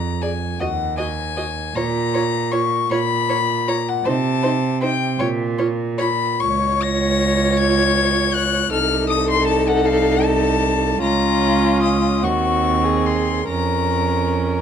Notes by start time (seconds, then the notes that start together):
Already playing: F2 A#5
0.21 G#4 D5 G#5
0.60 D#2 F#4 D#5 F#5
0.98 F#4 D#5 G#5
1.37 F#4 D#5
1.75 A#2 F4 C#5 A#5
2.14 F4 C#5
2.52 F4 C#5 C#6
2.90 A#2 F4 C#5 B5
3.29 F4 C#5
3.67 F4 C#5 A#5
3.88 F#5
4.05 C3 D#4 C5 A5
4.43 D#4 C5
4.81 D#4 C5 G5
5.19 A#2 F4 C#5
5.58 F4 C#5
5.98 F4 C#5 B5
6.40 C#2 F4 C#5 C#6
6.82 A#6
7.58 G#6
8.34 F#6
8.72 C2 D#4 A4 F6
9.10 D#6
9.31 C6
9.48 A5
9.68 F#5
9.86 F5
10.24 A5
11.01 C#2 C#4 F4 A#5
11.83 D#6
12.22 D#2 C4 F#4 C#6
12.84 G#4
13.06 C6
13.48 F2 C#4 A#4 A#5